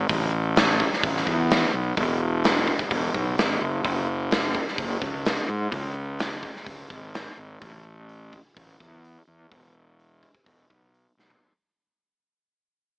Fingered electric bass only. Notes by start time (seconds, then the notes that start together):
0.09 A1
1.03 A1
1.27 E2
1.74 B1
1.97 E1
2.91 E1
3.15 B1
3.38 G#1
3.61 F#1
3.84 F#1
4.78 F#1
5.02 C#2
5.49 G#2
5.72 C#2
6.66 C#2
6.90 G#1
7.38 G#1
7.62 A1
8.56 A1
8.80 E2
9.27 E2
9.52 E1
10.46 E1
10.70 B1
11.17 B1